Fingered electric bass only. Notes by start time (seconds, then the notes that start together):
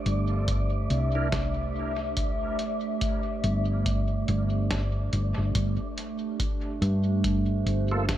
0.06 G1
0.90 C2
3.44 G1
4.28 G1
5.13 G1
5.38 G1
5.55 G1
6.82 G2
7.66 G1